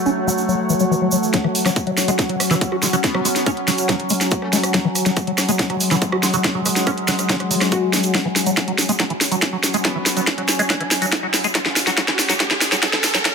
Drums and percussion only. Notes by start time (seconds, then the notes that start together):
0.06 shaker
0.28 shaker
0.38 shaker
0.49 shaker
0.70 shaker
0.79 shaker
0.92 shaker
1.11 shaker
1.23 shaker
1.33 kick, snare, closed hi-hat, shaker
1.44 cross-stick
1.55 open hi-hat, shaker
1.66 cross-stick, snare, closed hi-hat, shaker
1.76 kick, closed hi-hat, shaker
1.87 closed hi-hat
1.97 cross-stick, snare, open hi-hat, shaker
2.08 closed hi-hat, shaker
2.19 kick, cross-stick, snare, closed hi-hat, shaker
2.29 closed hi-hat
2.40 cross-stick, open hi-hat, shaker
2.51 snare, closed hi-hat, shaker
2.61 kick, closed hi-hat, shaker
2.72 cross-stick
2.82 snare, open hi-hat, shaker
2.93 cross-stick, closed hi-hat, shaker
3.04 kick, snare, closed hi-hat, shaker
3.15 cross-stick
3.25 open hi-hat, shaker
3.35 snare, closed hi-hat, shaker
3.46 kick, cross-stick, closed hi-hat, shaker
3.57 closed hi-hat
3.68 cross-stick, snare, open hi-hat, shaker
3.78 closed hi-hat, shaker
3.89 kick, cross-stick, snare, closed hi-hat, shaker
4.00 closed hi-hat
4.09 open hi-hat, shaker
4.21 cross-stick, snare, closed hi-hat, shaker
4.31 kick, closed hi-hat, shaker
4.42 cross-stick
4.53 snare, open hi-hat, shaker
4.63 cross-stick, closed hi-hat, shaker
4.74 kick, snare, closed hi-hat, shaker
4.95 cross-stick, open hi-hat, shaker
5.05 snare, closed hi-hat, shaker
5.16 kick, cross-stick, closed hi-hat, shaker
5.27 closed hi-hat
5.38 cross-stick, snare, open hi-hat, shaker
5.49 closed hi-hat, shaker
5.59 kick, snare, closed hi-hat, shaker
5.70 cross-stick, closed hi-hat
5.80 open hi-hat, shaker
5.91 cross-stick, snare, closed hi-hat, shaker
6.02 kick, closed hi-hat, shaker
6.12 cross-stick
6.23 snare, open hi-hat, shaker
6.33 closed hi-hat, shaker
6.44 kick, cross-stick, snare, closed hi-hat, shaker
6.66 cross-stick, open hi-hat, shaker
6.76 snare, closed hi-hat, shaker
6.87 kick, cross-stick, closed hi-hat, shaker
6.98 closed hi-hat
7.08 snare, open hi-hat, shaker
7.18 cross-stick, closed hi-hat, shaker
7.29 kick, snare, closed hi-hat, shaker
7.40 cross-stick, closed hi-hat
7.51 open hi-hat, shaker
7.61 cross-stick, snare, closed hi-hat, shaker
7.72 kick, closed hi-hat, shaker
7.93 cross-stick, snare, open hi-hat, shaker
8.03 closed hi-hat, shaker
8.15 kick, snare, closed hi-hat, shaker
8.36 snare, open hi-hat, shaker
8.46 closed hi-hat, shaker
8.57 kick, snare, closed hi-hat, shaker
8.68 closed hi-hat
8.78 snare, open hi-hat, shaker
8.89 closed hi-hat, shaker
8.99 kick, snare, closed hi-hat, shaker
9.10 closed hi-hat
9.21 snare, open hi-hat, shaker
9.32 closed hi-hat, shaker
9.41 kick, snare, closed hi-hat, shaker
9.63 snare, open hi-hat, shaker
9.74 closed hi-hat, shaker
9.84 kick, snare, closed hi-hat, shaker
10.06 snare, open hi-hat, shaker
10.17 closed hi-hat, shaker
10.27 kick, snare, closed hi-hat, shaker
10.38 closed hi-hat
10.48 snare, open hi-hat, shaker
10.59 closed hi-hat, shaker
10.70 kick, snare, closed hi-hat, shaker
10.81 closed hi-hat
10.91 snare, open hi-hat, shaker
11.02 closed hi-hat, shaker
11.12 kick, snare, closed hi-hat, shaker
11.34 snare, open hi-hat, shaker
11.44 closed hi-hat, shaker
11.55 kick, snare, closed hi-hat, shaker
11.66 snare
11.76 snare, open hi-hat, shaker
11.87 snare, closed hi-hat, shaker
11.97 kick, snare, closed hi-hat, shaker
12.08 snare, closed hi-hat
12.19 snare, open hi-hat, shaker
12.29 snare, closed hi-hat, shaker
12.40 kick, snare, closed hi-hat, shaker
12.51 snare, closed hi-hat
12.61 snare, open hi-hat, shaker
12.72 snare, closed hi-hat, shaker
12.83 kick, snare, closed hi-hat, shaker
12.93 snare
13.03 snare, open hi-hat, shaker
13.15 snare, closed hi-hat, shaker
13.25 kick, snare, closed hi-hat, shaker